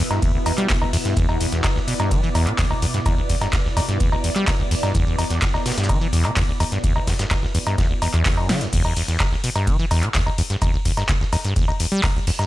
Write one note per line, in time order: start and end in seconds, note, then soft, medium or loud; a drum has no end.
0.00 8.69 B2 medium
0.00 8.69 B3 medium
0.00 8.69 E4 medium
0.00 1.13 E5 medium
0.11 0.20 G2 medium
0.11 snare soft
0.11 closed hi-hat medium
0.11 cowbell medium
0.22 0.32 E2 medium
0.22 kick loud
0.22 closed hi-hat soft
0.22 ride medium
0.22 shaker medium
0.34 0.38 D2 medium
0.46 0.53 E2 medium
0.46 open hi-hat loud
0.46 cowbell medium
0.46 shaker medium
0.58 0.68 G3 loud
0.58 clap soft
0.58 closed hi-hat medium
0.70 0.74 D2 loud
0.70 kick loud
0.70 snare loud
0.70 clap loud
0.70 open hi-hat medium
0.70 ride medium
0.70 shaker medium
0.82 0.85 D2 medium
0.82 cowbell medium
0.93 0.97 E2 loud
0.93 open hi-hat loud
0.93 open hi-hat medium
1.05 1.15 G2 medium
1.05 snare soft
1.05 closed hi-hat medium
1.17 1.27 E2 loud
1.17 8.69 D5 medium
1.17 kick loud
1.17 closed hi-hat medium
1.17 ride medium
1.17 shaker medium
1.29 1.38 E2 medium
1.29 cowbell medium
1.41 1.47 E2 medium
1.41 open hi-hat loud
1.41 shaker medium
1.52 1.62 E2 medium
1.52 snare soft
1.52 closed hi-hat medium
1.64 1.68 E2 medium
1.64 kick loud
1.64 snare loud
1.64 clap loud
1.64 closed hi-hat medium
1.64 ride medium
1.64 cowbell medium
1.64 shaker medium
1.76 1.80 D2 medium
1.76 snare soft
1.88 1.94 B2 medium
1.88 open hi-hat loud
1.88 shaker medium
2.00 2.13 G2 medium
2.00 snare soft
2.00 closed hi-hat medium
2.00 cowbell medium
2.11 2.21 E3 loud
2.11 kick loud
2.11 closed hi-hat medium
2.11 ride medium
2.11 shaker medium
2.23 2.30 E3 medium
2.23 closed hi-hat soft
2.35 2.48 E2 loud
2.35 open hi-hat loud
2.35 cowbell medium
2.35 shaker medium
2.47 2.53 B2 loud
2.47 clap soft
2.47 closed hi-hat medium
2.59 2.65 E2 loud
2.59 kick loud
2.59 snare loud
2.59 clap loud
2.59 open hi-hat medium
2.59 ride medium
2.59 shaker medium
2.70 2.74 D2 medium
2.70 cowbell medium
2.82 2.86 E2 loud
2.82 open hi-hat loud
2.82 shaker medium
2.94 3.01 G2 medium
2.94 snare soft
2.94 closed hi-hat medium
3.06 3.16 E2 medium
3.06 kick loud
3.06 closed hi-hat medium
3.06 ride medium
3.06 cowbell medium
3.06 shaker medium
3.18 3.22 D2 medium
3.29 3.36 E2 medium
3.29 kick medium
3.29 open hi-hat loud
3.29 shaker medium
3.41 3.48 G2 medium
3.41 snare medium
3.41 closed hi-hat medium
3.41 cowbell medium
3.53 3.57 D2 loud
3.53 kick loud
3.53 snare loud
3.53 clap loud
3.53 closed hi-hat medium
3.53 ride medium
3.53 shaker medium
3.65 3.69 D2 medium
3.65 snare soft
3.77 3.81 E2 loud
3.77 snare soft
3.77 open hi-hat loud
3.77 cowbell medium
3.77 shaker medium
3.89 3.98 G2 medium
3.89 snare soft
3.89 closed hi-hat medium
4.00 4.10 E2 medium
4.00 kick loud
4.00 closed hi-hat medium
4.00 ride medium
4.00 shaker medium
4.12 4.16 D2 medium
4.12 cowbell medium
4.24 4.31 E2 medium
4.24 open hi-hat loud
4.24 shaker medium
4.36 4.46 G3 loud
4.36 clap soft
4.36 closed hi-hat medium
4.48 4.52 D2 loud
4.48 kick loud
4.48 snare loud
4.48 clap loud
4.48 open hi-hat medium
4.48 ride medium
4.48 cowbell medium
4.48 shaker medium
4.59 4.63 D2 medium
4.71 4.75 E2 loud
4.71 open hi-hat loud
4.71 open hi-hat medium
4.83 4.93 G2 medium
4.83 snare soft
4.83 closed hi-hat medium
4.83 cowbell medium
4.95 5.05 E2 loud
4.95 kick loud
4.95 closed hi-hat medium
4.95 ride medium
4.95 shaker medium
5.07 5.16 E2 medium
5.18 5.25 E2 medium
5.18 open hi-hat loud
5.18 cowbell medium
5.18 shaker medium
5.30 5.40 E2 medium
5.30 snare soft
5.30 closed hi-hat medium
5.42 5.46 E2 medium
5.42 kick loud
5.42 snare loud
5.42 clap loud
5.42 closed hi-hat medium
5.42 ride medium
5.42 shaker medium
5.54 5.58 D2 medium
5.54 snare soft
5.54 cowbell medium
5.66 5.72 B2 medium
5.66 snare medium
5.66 open hi-hat loud
5.66 shaker medium
5.72 snare loud
5.72 shaker medium
5.78 5.91 G2 medium
5.78 snare medium
5.78 closed hi-hat medium
5.78 shaker medium
5.84 snare medium
5.84 shaker medium
5.89 5.99 E3 loud
5.89 kick loud
5.89 closed hi-hat medium
5.89 ride medium
5.89 cowbell medium
5.89 shaker medium
6.01 6.08 E3 medium
6.01 closed hi-hat soft
6.13 6.26 E2 loud
6.13 open hi-hat loud
6.13 shaker medium
6.25 6.31 B2 loud
6.25 clap soft
6.25 closed hi-hat medium
6.25 cowbell medium
6.37 6.43 E2 loud
6.37 kick loud
6.37 snare loud
6.37 clap loud
6.37 open hi-hat medium
6.37 ride medium
6.37 shaker medium
6.49 6.52 D2 medium
6.60 6.64 E2 loud
6.60 open hi-hat loud
6.60 cowbell medium
6.60 shaker medium
6.72 6.79 G2 medium
6.72 snare soft
6.72 closed hi-hat medium
6.84 6.94 E2 medium
6.84 kick loud
6.84 closed hi-hat medium
6.84 ride medium
6.84 shaker medium
6.96 7.00 D2 medium
6.96 cowbell medium
7.07 7.14 E2 medium
7.07 kick medium
7.07 snare loud
7.07 open hi-hat loud
7.07 shaker medium
7.19 7.26 G2 medium
7.19 snare loud
7.19 closed hi-hat medium
7.19 shaker medium
7.31 7.35 D2 loud
7.31 kick loud
7.31 snare loud
7.31 clap loud
7.31 closed hi-hat medium
7.31 ride medium
7.31 cowbell medium
7.31 shaker medium
7.43 7.47 D2 medium
7.43 snare soft
7.55 7.59 E2 loud
7.55 open hi-hat loud
7.55 shaker medium
7.67 7.76 G2 medium
7.67 snare soft
7.67 closed hi-hat medium
7.67 cowbell medium
7.78 7.88 E2 medium
7.78 kick loud
7.78 snare loud
7.78 closed hi-hat medium
7.78 ride medium
7.78 shaker medium
7.90 7.94 D2 medium
8.02 8.08 E2 medium
8.02 open hi-hat loud
8.02 cowbell medium
8.02 shaker medium
8.14 8.24 E2 loud
8.14 clap soft
8.14 closed hi-hat medium
8.26 8.39 E2 medium
8.26 kick loud
8.26 snare loud
8.26 clap loud
8.26 open hi-hat medium
8.26 ride medium
8.26 shaker medium
8.37 8.51 F#2 loud
8.37 cowbell medium
8.49 8.63 D3 loud
8.49 snare medium
8.49 open hi-hat medium
8.49 open hi-hat loud
8.61 8.68 E2 medium
8.61 snare medium
8.61 closed hi-hat medium
8.73 8.83 E2 loud
8.73 kick loud
8.73 closed hi-hat medium
8.73 crash loud
8.73 ride medium
8.73 shaker medium
8.85 8.94 E2 medium
8.85 cowbell medium
8.96 9.03 E2 medium
8.96 open hi-hat loud
8.96 shaker medium
9.08 9.18 E2 medium
9.08 snare soft
9.08 closed hi-hat medium
9.20 9.24 E2 medium
9.20 kick loud
9.20 snare loud
9.20 clap loud
9.20 closed hi-hat medium
9.20 ride medium
9.20 cowbell medium
9.20 shaker medium
9.32 9.36 D2 medium
9.32 snare soft
9.44 9.50 B2 medium
9.44 open hi-hat loud
9.44 shaker medium
9.56 9.69 G2 medium
9.56 snare soft
9.56 closed hi-hat medium
9.56 cowbell medium
9.67 9.77 E3 loud
9.67 kick loud
9.67 closed hi-hat medium
9.67 ride medium
9.67 shaker medium
9.79 9.86 E3 medium
9.79 closed hi-hat soft
9.91 10.04 E2 loud
9.91 open hi-hat loud
9.91 cowbell medium
9.91 shaker medium
10.03 10.09 B2 loud
10.03 clap soft
10.03 closed hi-hat medium
10.15 10.21 E2 loud
10.15 kick loud
10.15 snare loud
10.15 clap loud
10.15 open hi-hat medium
10.15 ride medium
10.15 shaker medium
10.26 10.30 D2 medium
10.26 cowbell medium
10.38 10.42 E2 loud
10.38 open hi-hat loud
10.38 shaker medium
10.50 10.57 G2 medium
10.50 snare medium
10.50 closed hi-hat medium
10.62 10.72 E2 medium
10.62 kick loud
10.62 closed hi-hat medium
10.62 ride medium
10.62 cowbell medium
10.62 shaker medium
10.74 10.78 D2 medium
10.85 10.92 E2 medium
10.85 kick medium
10.85 open hi-hat loud
10.85 shaker medium
10.97 11.04 G2 medium
10.97 snare medium
10.97 closed hi-hat medium
10.97 cowbell medium
11.09 11.13 D2 loud
11.09 kick loud
11.09 snare loud
11.09 clap loud
11.09 closed hi-hat medium
11.09 ride medium
11.09 shaker medium
11.21 11.25 D2 medium
11.21 snare soft
11.33 11.37 E2 medium
11.33 snare soft
11.33 open hi-hat loud
11.33 cowbell medium
11.33 shaker medium
11.45 11.54 G2 medium
11.45 snare soft
11.45 closed hi-hat medium
11.56 11.66 E2 medium
11.56 kick loud
11.56 closed hi-hat medium
11.56 ride medium
11.56 shaker medium
11.68 11.72 D2 medium
11.68 cowbell medium
11.80 11.86 E2 medium
11.80 open hi-hat loud
11.80 shaker medium
11.92 12.01 G3 loud
11.92 closed hi-hat medium
12.04 12.07 D2 loud
12.04 kick loud
12.04 snare loud
12.04 clap loud
12.04 open hi-hat medium
12.04 ride medium
12.04 cowbell medium
12.04 shaker medium
12.15 12.19 D2 medium
12.27 12.31 E2 loud
12.27 open hi-hat loud
12.27 open hi-hat medium
12.39 12.46 G2 medium
12.39 snare medium
12.39 closed hi-hat medium
12.39 cowbell medium